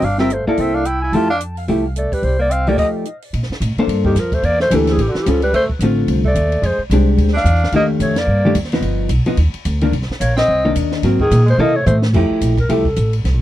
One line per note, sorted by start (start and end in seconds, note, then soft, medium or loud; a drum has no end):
0.02 0.43 G1 medium
0.02 0.18 D4 medium
0.02 0.19 F5 medium
0.02 open hi-hat soft
0.18 0.29 G3 soft
0.18 0.33 C4 medium
0.18 0.30 C4 medium
0.18 0.30 F4 medium
0.18 0.30 A#4 medium
0.18 0.35 E5 medium
0.18 snare soft
0.30 0.47 A3 medium
0.30 0.47 C5 medium
0.30 closed hi-hat medium
0.47 0.60 A#3 medium
0.47 0.83 A#3 medium
0.47 0.84 E4 medium
0.47 0.84 A4 medium
0.47 0.62 D5 medium
0.47 muted upright bass stroke soft
0.57 1.10 C2 medium
0.57 0.76 C4 medium
0.57 0.76 E5 medium
0.57 open hi-hat soft
0.75 0.88 D4 medium
0.75 0.87 F5 medium
0.85 1.02 E4 medium
0.85 1.01 G5 medium
0.85 closed hi-hat soft
1.02 1.17 E4 medium
1.02 1.15 G#5 medium
1.12 1.65 F2 medium
1.12 1.28 F3 medium
1.12 1.28 A3 medium
1.12 1.29 E4 medium
1.12 1.29 F4 medium
1.12 1.29 G4 medium
1.12 1.29 A5 medium
1.12 open hi-hat soft
1.30 1.40 D4 medium
1.30 1.37 F5 medium
1.40 closed hi-hat medium
1.57 open hi-hat soft
1.68 2.09 C2 medium
1.68 1.83 F3 soft
1.68 1.83 A3 medium
1.68 1.83 E4 medium
1.68 1.83 G4 soft
1.68 open hi-hat soft
1.96 2.14 A3 medium
1.96 2.15 D5 medium
1.96 closed hi-hat medium
2.12 2.24 G3 medium
2.12 2.26 B4 medium
2.12 muted upright bass stroke soft
2.12 kick soft
2.12 open hi-hat soft
2.22 2.75 C2 medium
2.22 2.39 G3 medium
2.22 2.40 C5 medium
2.22 open hi-hat soft
2.39 2.51 A#3 medium
2.39 2.53 D5 medium
2.50 2.69 C4 medium
2.50 2.70 F5 medium
2.50 closed hi-hat medium
2.67 3.04 F3 medium
2.67 3.04 A3 medium
2.67 2.79 A#3 medium
2.67 3.04 D#4 medium
2.67 3.05 G4 medium
2.67 2.78 D5 medium
2.67 open hi-hat soft
2.78 2.89 D#5 medium
2.78 kick medium
2.78 open hi-hat soft
2.78 crash medium
3.05 closed hi-hat medium
3.22 open hi-hat soft
3.33 3.48 A#2 medium
3.33 ride medium
3.43 snare soft
3.50 muted upright bass stroke soft
3.50 snare soft
3.60 3.76 A2 medium
3.60 hi-hat pedal medium
3.60 ride medium
3.77 4.15 A#3 medium
3.77 4.15 D4 medium
3.77 4.15 A4 medium
3.77 4.15 C5 medium
3.77 muted upright bass stroke soft
3.77 ride soft
3.87 4.14 G2 medium
3.87 ride medium
4.04 4.19 D#3 medium
4.04 4.21 G4 medium
4.04 kick medium
4.15 4.42 F2 medium
4.15 4.35 F3 medium
4.15 snare soft
4.15 hi-hat pedal medium
4.15 ride medium
4.19 4.36 A#4 medium
4.32 4.45 A3 medium
4.32 4.47 C5 medium
4.32 kick medium
4.32 ride soft
4.43 4.70 E2 medium
4.43 4.60 A#3 medium
4.43 4.61 D5 medium
4.43 ride medium
4.60 4.72 A3 medium
4.60 4.77 C5 loud
4.60 snare medium
4.70 4.97 D2 medium
4.70 4.88 E3 medium
4.70 4.99 E3 medium
4.70 4.99 A#3 medium
4.70 4.99 D4 medium
4.70 5.00 G4 medium
4.70 hi-hat pedal medium
4.70 ride medium
4.75 4.94 A4 medium
4.87 4.98 E3 medium
4.87 snare soft
4.87 ride soft
4.92 5.04 G#4 medium
4.97 5.13 A1 medium
4.97 5.10 E3 medium
4.97 ride medium
5.02 5.13 G4 medium
5.09 5.19 D3 medium
5.09 5.23 F#4 medium
5.14 5.28 E3 medium
5.14 muted upright bass stroke soft
5.14 snare medium
5.22 5.31 G4 medium
5.26 5.52 C#2 medium
5.26 5.42 F3 medium
5.26 5.41 G3 soft
5.26 5.41 C#4 soft
5.26 5.42 F4 medium
5.26 5.43 A4 medium
5.26 hi-hat pedal medium
5.26 ride medium
5.42 5.53 G3 medium
5.42 5.53 B4 loud
5.42 ride medium
5.53 5.68 D2 medium
5.53 5.69 A3 medium
5.53 5.65 C5 medium
5.53 ride medium
5.69 muted upright bass stroke soft
5.69 kick soft
5.79 6.07 A1 medium
5.79 6.22 D3 medium
5.79 6.22 A3 medium
5.79 hi-hat pedal medium
5.79 ride medium
5.84 6.23 C4 medium
5.84 6.23 F4 medium
6.08 6.34 C2 medium
6.08 ride medium
6.24 6.65 A3 medium
6.24 6.68 D5 medium
6.24 kick medium
6.35 6.61 D#2 medium
6.35 hi-hat pedal medium
6.35 ride medium
6.52 ride soft
6.62 6.77 F2 medium
6.62 6.80 G#3 medium
6.62 ride medium
6.66 6.81 C5 medium
6.78 muted upright bass stroke soft
6.90 7.16 C2 medium
6.90 7.32 G#3 medium
6.90 7.32 D4 medium
6.90 7.33 G4 medium
6.90 hi-hat pedal medium
6.90 ride medium
7.17 7.44 D2 medium
7.17 ride medium
7.28 snare soft
7.34 7.70 D4 medium
7.34 7.72 F5 medium
7.34 snare soft
7.44 7.71 E2 medium
7.44 hi-hat pedal medium
7.44 ride medium
7.55 snare soft
7.64 snare medium
7.72 7.99 D#2 medium
7.72 8.14 D#3 medium
7.72 8.14 A3 medium
7.72 7.90 A#3 medium
7.72 8.15 D4 medium
7.72 8.15 G4 medium
7.72 ride medium
7.76 7.85 D#5 medium
8.00 8.27 F2 medium
8.00 8.19 A3 medium
8.00 8.20 C#5 medium
8.00 hi-hat pedal medium
8.00 ride medium
8.16 8.56 A#3 medium
8.16 8.57 D5 medium
8.16 snare medium
8.16 ride medium
8.27 8.54 G2 medium
8.45 8.55 D#3 medium
8.45 8.56 A3 medium
8.45 8.56 D4 medium
8.45 8.56 G4 medium
8.55 8.80 D#2 medium
8.55 hi-hat pedal medium
8.55 ride medium
8.64 snare soft
8.72 9.09 F3 medium
8.72 9.09 B3 medium
8.72 9.10 D#4 medium
8.72 snare soft
8.72 ride soft
8.81 9.08 G1 medium
8.81 ride medium
9.09 9.24 B1 medium
9.09 hi-hat pedal medium
9.09 ride medium
9.25 9.37 F3 medium
9.25 9.38 B3 medium
9.25 9.38 D#4 medium
9.25 muted upright bass stroke soft
9.25 ride soft
9.37 9.53 D#2 medium
9.37 ride medium
9.54 ride medium
9.65 9.92 D2 loud
9.65 hi-hat pedal medium
9.65 ride medium
9.81 9.92 D#3 medium
9.81 9.93 A#3 medium
9.81 9.93 D4 medium
9.81 ride medium
9.92 10.08 C2 medium
9.92 ride medium
10.02 snare soft
10.09 muted upright bass stroke soft
10.09 snare soft
10.20 10.48 A#1 medium
10.20 10.36 A#3 medium
10.20 10.36 C#5 medium
10.20 hi-hat pedal medium
10.20 ride medium
10.36 10.73 C4 medium
10.36 10.74 D#5 medium
10.36 snare medium
10.36 ride medium
10.48 10.75 C2 medium
10.65 11.02 D#3 medium
10.65 11.02 A#3 medium
10.65 11.02 D4 medium
10.75 11.02 D#2 medium
10.75 hi-hat pedal medium
10.75 ride medium
10.92 snare medium
11.03 11.30 G#2 medium
11.03 11.19 F#3 medium
11.03 11.19 A#3 medium
11.03 11.19 C4 medium
11.03 snare soft
11.03 ride medium
11.20 11.46 D#3 medium
11.20 11.47 G#4 medium
11.20 kick medium
11.31 11.58 A#2 loud
11.31 hi-hat pedal medium
11.31 ride medium
11.46 11.59 G#3 medium
11.46 11.62 C5 loud
11.46 ride soft
11.58 11.85 C3 medium
11.58 11.76 A#3 medium
11.58 11.74 A#3 medium
11.58 11.74 E4 medium
11.58 11.74 A4 medium
11.58 11.78 D#5 medium
11.58 mid tom medium
11.75 11.86 A3 medium
11.75 11.86 C#5 medium
11.86 12.13 A2 loud
11.86 12.02 A3 medium
11.86 11.97 C5 medium
11.86 hi-hat pedal medium
11.86 mid tom medium
12.02 snare medium
12.13 12.29 F2 medium
12.13 12.55 F3 medium
12.13 12.55 A3 medium
12.13 12.56 E4 medium
12.13 12.56 G4 medium
12.13 kick medium
12.13 crash medium
12.31 muted upright bass stroke soft
12.41 12.68 A#1 medium
12.41 hi-hat pedal medium
12.41 ride medium
12.58 12.73 A#4 medium
12.58 kick soft
12.58 ride soft
12.69 12.96 C2 medium
12.69 12.84 F3 medium
12.69 12.84 A3 medium
12.69 12.84 E4 medium
12.69 12.85 G4 medium
12.69 13.15 A4 medium
12.69 ride medium
12.85 kick medium
12.96 13.24 A1 medium
12.96 hi-hat pedal medium
12.96 ride medium
13.13 ride medium
13.24 13.33 C2 medium
13.24 snare soft
13.24 ride medium
13.33 13.42 A#1 medium